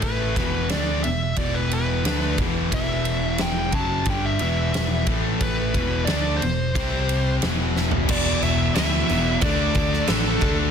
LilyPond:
<<
  \new Staff \with { instrumentName = "Lead electric guitar" } { \time 4/4 \key e \minor \tempo 4 = 90 b'4 d''8 e''8 d''16 b'16 b'4 r8 | e''4 g''8 a''8 g''16 e''16 e''4 r8 | b'4 d''8 c''4. r4 | \key d \mixolydian d''8 e''8 e''4 d''4 a'8. r16 | }
  \new Staff \with { instrumentName = "Overdriven electric guitar" } { \clef bass \time 4/4 \key e \minor <a, e a>8 <e, b, e>8 <d a d'>8 <e, b,>8 <e, b, e>4 <d a d'>8 <e, b, e>8 | <e, b, e>4. <fis, cis fis>8 <g, d g>8 <e, b, e>4 <a, e a>8~ | <a, e a>8 <e, b, e>8 <d a d'>8 <e, b,>8 <c g c'>4 <e, b, e>4 | \key d \mixolydian <e, b, e>4 <e, b, e>8 <e, b, e>8 <d a d'>4 <d a d'>8 <d a d'>8 | }
  \new Staff \with { instrumentName = "Overdriven electric guitar" } { \clef bass \time 4/4 \key e \minor <a, e a>8 <e, b, e>8 <d a d'>8 <e, b,>8 <e, b, e>4 <d a d'>8 <e, b, e>8 | <e, b, e>4. <fis, cis fis>8 <g, d g>8 <e, b, e>4 <a, e a>8~ | <a, e a>8 <e, b, e>8 <d a d'>8 <e, b,>8 <c g c'>4 <e, b, e>4 | \key d \mixolydian <e, b, e>4 <e, b, e>8 <e, b, e>8 <d a d'>4 <d a d'>8 <d a d'>8 | }
  \new Staff \with { instrumentName = "Picked electric bass" } { \clef bass \time 4/4 \key e \minor a,,8 e,,8 d,8 e,,8 e,,4 d,8 e,,8 | e,,4. fis,,8 g,,8 e,,4 a,,8~ | a,,8 e,,8 d,8 e,,8 c,4 e,,4 | \key d \mixolydian e,,8 e,,8 d,8 e,,8 d,8 d,8 a,,8 d,8 | }
  \new DrumStaff \with { instrumentName = "Drums" } \drummode { \time 4/4 <bd cymr>8 <bd cymr sn>8 <cymr sn>8 cymr8 <bd cymr>8 cymr8 <cymr sn>8 <bd cymr>8 | <bd cymr>8 cymr8 <cymr sn>8 <bd cymr>8 <bd cymr>8 cymr8 <cymr sn>8 <bd cymr>8 | <bd cymr>8 <bd cymr>8 <cymr sn>8 cymr8 <bd cymr>8 cymr8 <cymr sn>8 sn16 tomfh16 | <cymc bd>8 cymc8 <cymc sn>8 cymc8 <cymc bd>8 <cymc bd>16 sn16 <cymc sn>8 <cymc bd>8 | }
>>